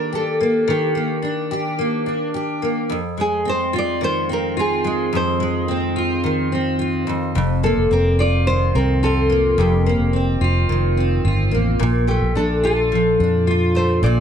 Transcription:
0.00 0.67 D#3 medium
0.00 0.39 A#3 medium
0.00 1.21 D4 medium
0.00 0.11 G4 medium
0.00 0.14 A#4 medium
0.13 1.50 G4 medium
0.13 0.70 A4 medium
0.41 0.94 A#3 medium
0.68 2.93 D#3 medium
0.68 1.76 G4 medium
0.95 1.77 A#3 medium
1.22 2.05 D4 soft
1.51 2.33 G4 medium
1.79 2.61 A#3 medium
2.06 2.95 D4 medium
2.34 2.95 G4 medium
2.62 2.96 A#3 medium
2.90 5.11 F2 medium
3.17 4.83 G#3 medium
3.17 3.48 G#4 medium
3.45 4.29 C4 medium
3.49 3.74 C5 medium
3.73 4.56 F4 medium
3.79 4.04 D5 medium
4.01 6.23 D#3 medium
4.01 4.29 C5 medium
4.29 5.68 C4 medium
4.29 4.60 A#4 medium
4.57 5.95 F4 medium
4.57 5.10 G#4 medium
4.84 5.39 G#3 medium
5.13 7.06 F2 medium
5.13 6.22 C5 medium
5.40 7.13 G#3 medium
5.68 6.52 C4 medium
5.96 6.79 F4 medium
6.24 7.38 D#3 medium
6.52 7.66 C4 medium
6.79 8.18 F4 medium
7.07 7.34 F2 medium
7.35 7.74 F1 medium
7.35 9.57 F2 medium
7.63 9.29 A#3 medium
7.63 7.92 A4 medium
7.77 7.90 F1 medium
7.91 8.70 F1 medium
7.91 8.74 C4 soft
7.91 8.20 A#4 medium
8.19 9.02 F4 medium
8.19 8.47 D5 medium
8.47 10.68 D#3 medium
8.47 8.75 C5 medium
8.75 9.54 C2 medium
8.75 10.12 C4 soft
8.75 9.03 A#4 medium
9.03 10.41 F4 medium
9.03 9.59 A4 medium
9.30 9.86 A#3 medium
9.58 9.96 F1 medium
9.58 11.80 F2 medium
9.58 10.66 G4 medium
9.86 11.51 A#3 medium
9.99 10.37 F1 medium
10.13 10.96 C4 medium
10.41 10.66 F1 medium
10.41 11.24 F4 medium
10.69 11.20 F1 loud
10.69 11.86 D#3 medium
10.97 11.86 C4 medium
11.24 11.50 G1 medium
11.24 12.63 F4 medium
11.51 11.78 A1 medium
11.51 12.07 A#3 medium
11.79 12.18 A#1 medium
11.79 14.02 A#2 medium
12.07 13.74 A3 medium
12.07 12.36 G4 medium
12.22 12.35 A#1 medium
12.35 13.15 A#1 medium
12.35 13.20 D4 medium
12.35 12.62 A4 medium
12.63 13.46 F4 medium
12.63 13.78 A4 medium
12.92 14.20 F3 medium
13.20 13.99 F2 medium
13.20 14.20 D4 medium
13.47 14.20 F4 medium
13.75 14.20 A3 medium
13.75 14.03 C5 medium
14.02 14.20 A#1 loud
14.02 14.20 A#2 medium
14.02 14.20 D5 medium

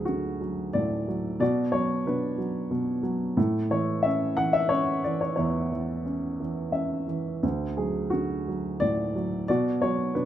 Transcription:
0.00 1.37 D2 soft
0.00 0.40 F#3 soft
0.00 1.43 G#4 medium
0.05 1.37 D3 soft
0.05 0.70 F#4 medium
0.41 1.06 F#3 soft
0.73 1.39 A2 soft
0.73 1.39 D5 medium
1.08 1.40 F#3 soft
1.40 2.05 B2 medium
1.40 2.36 F#4 medium
1.40 1.75 D5 medium
1.72 2.37 F#3 soft
1.72 2.03 C#5 medium
2.06 2.69 B2 soft
2.06 3.01 D4 soft
2.06 3.01 B4 medium
2.38 3.02 F#3 soft
2.71 3.35 B2 medium
3.03 3.35 F#3 soft
3.37 5.34 A2 medium
3.70 4.36 E3 soft
3.70 4.05 C#5 medium
4.03 4.70 C#4 soft
4.03 4.38 E5 medium
4.37 5.03 E3 soft
4.37 4.54 F#5 medium
4.53 4.71 E5 medium
4.69 6.02 C#4 soft
4.69 5.01 C#5 medium
5.04 5.71 E3 soft
5.04 5.22 D5 medium
5.21 5.34 C#5 medium
5.36 7.40 E2 medium
5.36 7.05 E4 soft
5.36 7.04 C#5 medium
5.72 6.38 E3 soft
6.05 6.71 C#4 soft
6.40 7.07 E3 soft
6.72 7.40 C#4 soft
6.72 7.39 E5 medium
7.08 7.42 E3 soft
7.43 9.44 D2 medium
7.77 8.47 F#3 soft
7.77 8.10 G#4 medium
8.10 9.44 D3 soft
8.10 8.82 F#4 medium
8.48 9.14 F#3 soft
8.80 9.47 A2 soft
8.80 9.44 D5 medium
9.15 9.48 F#3 soft
9.48 10.13 B2 medium
9.48 10.25 F#4 medium
9.48 9.79 D5 medium
9.82 10.25 F#3 soft
9.82 10.15 C#5 medium
10.15 10.25 B2 soft
10.15 10.25 D4 medium
10.15 10.25 B4 medium

